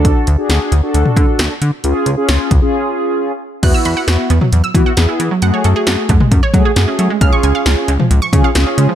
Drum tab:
CC |----------------|----------------|x---------------|----------------|
HH |x-x-x-x-x-x-x-x-|x-x-x-x---------|x-x-x-x-x-x-x-x-|x-x-x-x-x-x-x-x-|
SD |----o-------o---|----o-----------|----o-------o---|----o-------o---|
T2 |---------o------|----------------|-------o--------|-------o--------|
BD |o---------o-----|------o---------|o---------o-----|------o-o-o-----|

CC |----------------|
HH |x-x-x-x-x-x-x-x-|
SD |----o-------o---|
T2 |-------o--------|
BD |o---------o-----|